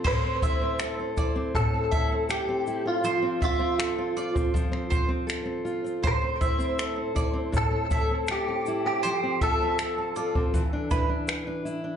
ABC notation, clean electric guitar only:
X:1
M:4/4
L:1/16
Q:1/4=80
K:Am
V:1 name="Clean electric guitar"
c8 A4 G3 F- | F2 F6 z8 | c8 A4 G3 G- | G2 A6 z8 |]